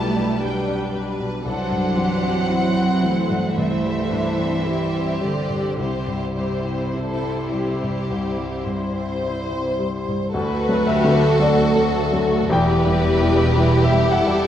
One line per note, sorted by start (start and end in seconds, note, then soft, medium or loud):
0.00 1.41 B1 medium
0.00 1.19 B2 soft
0.00 0.32 G3 soft
0.00 1.47 G3 medium
0.00 0.43 A3 medium
0.00 0.44 E4 soft
0.00 0.42 G4 medium
0.00 0.39 B4 medium
0.00 0.43 A5 medium
0.15 0.58 D4 soft
0.40 0.95 G3 medium
0.40 0.84 G4 soft
0.40 0.92 B4 medium
0.40 0.95 G5 medium
0.46 1.45 D4 soft
0.68 1.10 D4 soft
0.93 1.35 G3 soft
0.93 1.44 B4 medium
1.19 1.46 B2 soft
1.45 3.53 C2 soft
1.45 2.49 E3 soft
1.45 3.54 F#3 medium
1.45 2.49 D4 soft
1.45 1.98 A4 medium
1.45 3.53 C5 medium
1.45 3.53 F#5 medium
1.71 2.13 G2 soft
1.97 2.39 E3 soft
1.97 2.49 G4 soft
2.23 2.65 C4 soft
2.48 3.04 E3 soft
2.48 3.57 C4 soft
2.48 2.92 E4 soft
2.48 3.55 E4 soft
2.75 3.19 C4 soft
3.04 3.47 E3 soft
3.04 4.67 A3 medium
3.30 3.74 G2 soft
3.56 5.75 C2 soft
3.56 5.22 E3 medium
3.56 4.11 C4 soft
3.56 4.63 E4 soft
3.56 5.74 C5 medium
3.56 5.22 E5 medium
3.85 4.28 G3 soft
4.11 4.55 G2 soft
4.11 4.66 D4 soft
4.39 4.83 C4 soft
4.65 5.78 G3 soft
4.65 5.21 E4 soft
4.65 5.11 E4 soft
4.65 5.79 G4 medium
4.94 5.39 C4 soft
5.21 5.78 D3 soft
5.21 5.67 G3 soft
5.21 5.78 G4 soft
5.21 5.79 D5 medium
5.49 5.78 G2 soft
5.78 8.06 C2 soft
5.78 9.80 C3 soft
5.78 10.10 G3 soft
5.78 10.14 E4 soft
5.78 6.82 G4 soft
5.78 9.75 C5 medium
5.78 6.83 C5 soft
6.07 6.54 G2 soft
6.37 6.83 G3 soft
6.65 7.12 C4 soft
6.93 7.41 E4 soft
6.93 7.49 A4 medium
7.23 7.70 C4 soft
7.52 7.98 G3 soft
7.52 8.67 G4 soft
7.82 8.28 G2 soft
8.10 10.30 C2 soft
8.38 8.83 G3 soft
8.65 9.11 G2 soft
8.65 10.35 C5 medium
8.93 9.39 C4 soft
9.23 9.68 E4 soft
9.50 9.96 C4 soft
9.79 10.23 G3 soft
10.07 10.34 G2 soft
10.33 10.68 D2 medium
10.33 12.47 D2 medium
10.33 12.46 F#4 medium
10.33 12.46 A4 medium
10.33 11.36 B4 medium
10.69 11.01 F#3 soft
10.69 11.01 A3 soft
10.69 11.01 A4 medium
10.87 11.37 G4 medium
10.87 11.36 E5 medium
11.04 11.36 D3 soft
11.04 11.36 A3 soft
11.04 11.36 A4 medium
11.39 11.72 F#3 soft
11.39 11.72 A3 soft
11.39 12.51 F#4 medium
11.39 11.72 A4 medium
11.39 12.51 A4 medium
11.39 12.48 D5 medium
11.75 12.09 F#3 soft
11.75 12.10 A3 soft
11.75 12.10 A4 soft
12.13 12.47 F#3 soft
12.13 12.47 A3 soft
12.13 12.47 A4 medium
12.50 14.47 E1 medium
12.50 12.85 E2 medium
12.50 14.47 E2 medium
12.50 14.47 E4 medium
12.50 14.47 G4 medium
12.50 13.84 B4 medium
12.50 13.80 G5 medium
12.86 13.18 G3 soft
12.86 13.18 E4 soft
12.86 13.18 G4 soft
13.22 13.53 G3 medium
13.22 13.54 E4 soft
13.22 13.54 G4 soft
13.57 13.88 G3 soft
13.57 13.89 E4 medium
13.57 13.89 G4 soft
13.82 14.09 G4 medium
13.82 14.09 E5 medium
13.92 14.24 G3 soft
13.92 14.24 E4 soft
13.92 14.25 G4 medium
14.10 14.47 A4 medium
14.10 14.47 F#5 medium
14.27 14.47 G3 soft
14.27 14.47 E4 soft
14.27 14.47 G4 soft